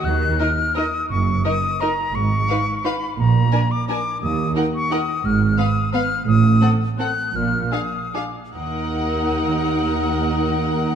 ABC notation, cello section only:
X:1
M:3/4
L:1/8
Q:1/4=169
K:Ebm
V:1 name="Cello section" clef=bass
E,2 z4 | G,,2 z4 | A,,2 z4 | B,,2 z4 |
E,,2 z4 | A,,2 z4 | =A,,2 z4 | B,,2 z4 |
E,,6- | E,,6 |]